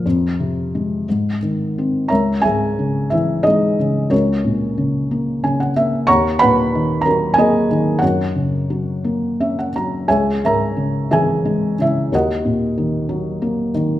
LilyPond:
<<
  \new Staff \with { instrumentName = "Felt piano" } { \time 6/8 \key aes \lydian \tempo 4. = 60 << { <d' f' bes'>2 r4 | \key cis \dorian <ais' cis'' e'' ais''>8 <gis' e'' gis''>4 <e' e''>8 <dis' gis' dis''>4 | <cis' fis' ais' cis''>2~ <cis' fis' ais' cis''>8 r8 | <cis'' fis'' ais'' cis'''>8 <b' fis'' b''>4 <ais' ais''>8 <gis' dis'' gis''>4 |
<fis' ais' cis'' fis''>2~ <fis' ais' cis'' fis''>8 r8 | <gis' cis'' e'' gis''>8 <ais' e'' ais''>4 <gis' e'' gis''>4 <e' e''>8 | <fis' ais' dis'' fis''>2~ <fis' ais' dis'' fis''>8 r8 | } \\ { r2. | r2. | r2 gis''16 fis''16 e''8 | r2. |
r2 e''16 fis''16 ais''8 | r2. | r2. | } >> }
  \new Staff \with { instrumentName = "Felt piano" } { \clef bass \time 6/8 \key aes \lydian f,8 c8 aes8 aes,8 ees8 c'8 | \key cis \dorian cis,8 gis,8 cis8 e8 gis8 cis8 | cis,8 ais,8 cis8 ais8 cis8 ais8 | dis,8 ais,8 dis8 fis8 ais8 dis8 |
fis,8 cis8 fis8 ais8 cis'8 fis8 | cis,8 gis,8 cis8 e8 gis8 cis8 | dis,8 ais,8 dis8 fis8 ais8 dis8 | }
>>